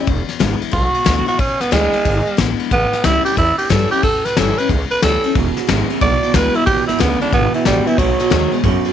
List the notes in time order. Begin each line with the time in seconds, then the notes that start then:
0.07 E1 E2, kick, ride
0.29 muted upright bass stroke, snare, ride
0.39 G#1 D3 G#3 B3 E4, snare, ride
0.61 B3 E4, muted upright bass stroke, ride
0.72 B1 B2 F#4, kick, ride
0.94 muted upright bass stroke, ride
1.04 D2 D3 G#3 B3 E4, kick, snare, ride
1.26 B3 E4 F#4, ride
1.38 B1 E2 C#4, kick, ride
1.60 G#1 B3, snare, ride
1.71 D2 D3 G#3 B3 E4, snare, ride
1.93 B3 E4, muted upright bass stroke, ride
2.05 G#1 B2, kick, ride
2.26 ride
2.37 A1 D3 G#3 B3 E4, snare, ride
2.59 muted upright bass stroke, ride
2.71 A1 A2 B3, kick, ride
2.92 muted upright bass stroke, snare, ride
3.04 C#2 E3 G3 C#4 E4, snare, ride
3.25 G4, muted upright bass stroke, ride
3.37 E2 E4, kick, ride
3.58 G4, muted upright bass stroke, ride
3.69 G2 E3 G3 C#4 E4 A4, kick, snare, ride
3.91 C#4 E4 G4, muted upright bass stroke, ride
4.03 E2 A2 A4, kick, ride
4.25 C#2 B4, snare, ride
4.37 G1 E3 G3 C#4 E4 A4, snare, ride
4.58 C#4 E4 B4, muted upright bass stroke, ride
4.69 C#2 E2, kick, ride
4.91 B4, muted upright bass stroke, ride
5.02 D2 E3 G3 C#4 E4 A4, snare, ride
5.24 C#4 E4, muted upright bass stroke, ride
5.35 E1 E2 B2, kick, ride
5.57 E2 B2, muted upright bass stroke, snare, ride
5.67 G#1 E2 C#3 D3 G#3 B3 E4, snare, ride
5.90 E2 C#3 B3 E4, muted upright bass stroke, ride
6.01 B1 E2 B2 D5, kick, ride
6.22 E2 B2, muted upright bass stroke, ride
6.34 D2 E2 B2 D3 G#3 B3 E4 B4, kick, snare, ride
6.54 E2 B2 B3 E4, muted upright bass stroke, ride
6.66 B1 E2 B2 G4, kick, ride
6.88 G#1 E2 B2 E4, snare, ride
6.99 D2 E2 C#3 D3 G#3 B3 E4, snare, ride
7.21 E2 C#3 D4, muted upright bass stroke, ride
7.32 G#1 E2 B2 B3, kick, ride
7.54 E2 B2 E3, muted upright bass stroke, ride
7.65 A1 E2 B2 D3 G3 G#3 B3 E4, snare, ride
7.87 E2 B2 E3 B3 E4, muted upright bass stroke, ride
7.98 B1 B2 F#3, kick, ride
8.19 B2 F#3, muted upright bass stroke, snare, ride
8.30 D#2 B2 D#3 G#3 A3 B3 F#4, snare, ride
8.52 B2 G#3 B3 F#4, muted upright bass stroke, ride
8.63 F#2 B2 F#3, kick, ride
8.85 B2 F#3, muted upright bass stroke, ride